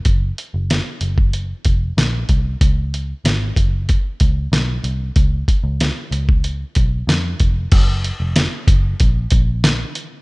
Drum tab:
CC |----------------|----------------|----------------|x---------------|
HH |x-x-x-x-x-x-x-x-|x-x-x-x-x-x-x-x-|x-x-x-x-x-x-x-x-|x-x-x-x-x-x-x-x-|
SD |----o-------o---|----o-------o---|----o-------o---|----o-------o---|
BD |o------o--o---o-|o-----o-o-o-----|o-o----o--o---o-|o-----o-o-o-----|